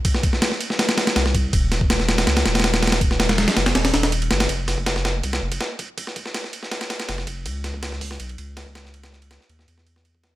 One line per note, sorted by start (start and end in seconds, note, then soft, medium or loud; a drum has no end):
0.05 kick loud
0.05 ride medium
0.15 snare soft
0.23 kick loud
0.23 ride medium
0.33 snare medium
0.42 snare loud
0.42 ride medium
0.52 snare soft
0.61 ride medium
0.70 snare soft
0.79 snare loud
0.79 ride medium
0.89 snare loud
0.89 ride medium
0.98 snare loud
0.98 ride medium
1.07 snare loud
1.07 ride medium
1.16 1.52 C2 medium
1.16 snare loud
1.16 ride medium
1.26 snare soft
1.35 kick loud
1.35 ride medium
1.53 2.26 D#1 medium
1.53 kick loud
1.53 ride medium
1.72 snare medium
1.72 ride medium
1.81 kick loud
1.90 snare loud
1.90 ride medium
2.00 snare medium
2.09 snare loud
2.09 ride medium
2.18 snare loud
2.18 ride medium
2.27 2.44 C#2 loud
2.27 snare loud
2.27 ride medium
2.37 snare loud
2.37 ride medium
2.46 3.46 D#1 medium
2.46 snare loud
2.46 ride medium
2.55 snare medium
2.55 ride medium
2.60 snare medium
2.60 ride medium
2.64 snare loud
2.64 ride medium
2.74 snare loud
2.74 ride medium
2.83 snare medium
2.83 ride medium
2.87 snare medium
2.87 ride medium
2.92 snare loud
2.92 ride medium
3.01 kick loud
3.01 ride medium
3.11 snare soft
3.20 snare loud
3.20 ride medium
3.29 snare loud
3.29 ride medium
3.38 snare loud
3.38 ride medium
3.48 snare loud
3.48 ride medium
3.57 3.73 F1 medium
3.57 snare loud
3.57 ride medium
3.66 snare loud
3.66 ride medium
3.75 3.92 D#1 medium
3.75 snare loud
3.75 ride medium
3.85 snare loud
3.85 ride medium
3.94 4.29 D#1 loud
3.94 snare loud
3.94 ride medium
4.03 snare loud
4.03 ride medium
4.12 ride medium
4.22 ride soft
4.31 4.48 F#1 medium
4.31 snare loud
4.31 ride medium
4.40 snare loud
4.40 ride medium
4.49 5.22 F1 loud
4.49 kick loud
4.49 ride medium
4.68 snare medium
4.68 ride medium
4.78 kick medium
4.86 snare loud
4.86 ride medium
4.96 snare medium
5.05 snare loud
5.05 ride medium
5.23 5.40 C2 medium
5.23 kick medium
5.23 ride medium
5.33 snare loud
5.33 ride medium
5.42 5.59 F1 loud
5.52 kick medium
5.52 ride medium
5.61 snare loud
5.61 ride medium
5.79 kick medium
5.79 ride medium
5.98 kick loud
5.98 ride medium
6.07 snare soft
6.16 kick loud
6.16 ride medium
6.26 snare medium
6.34 snare loud
6.34 ride medium
6.44 snare soft
6.53 ride medium
6.63 snare soft
6.71 snare loud
6.71 ride medium
6.81 snare loud
6.81 ride medium
6.90 snare loud
6.90 ride medium
7.00 snare loud
7.00 ride medium
7.09 7.47 F1 medium
7.09 snare loud
7.09 ride medium
7.18 snare soft
7.27 kick medium
7.27 ride medium
7.46 8.18 C#2 medium
7.46 kick loud
7.46 ride medium
7.64 snare medium
7.64 ride medium
7.74 kick medium
7.83 snare loud
7.83 ride medium
7.92 snare medium
8.01 kick medium
8.01 open hi-hat medium
8.11 snare soft
8.20 8.37 B1 loud
8.20 ride medium
8.29 ride soft
8.38 9.39 C#2 medium
8.38 ride medium
8.57 snare loud
8.57 ride medium
8.66 kick medium
8.75 snare loud
8.75 ride medium
8.85 snare soft
8.94 ride medium
9.04 snare loud
9.04 ride medium
9.12 snare soft
9.22 ride medium
9.31 snare loud
9.31 ride medium
9.41 snare soft
9.49 9.66 D#2 medium
9.49 ride medium
9.59 snare soft
9.68 10.36 E2 loud
9.68 ride medium
9.78 snare soft
9.87 ride medium
9.96 snare soft
10.05 ride medium
10.15 kick medium
10.24 snare loud
10.24 ride medium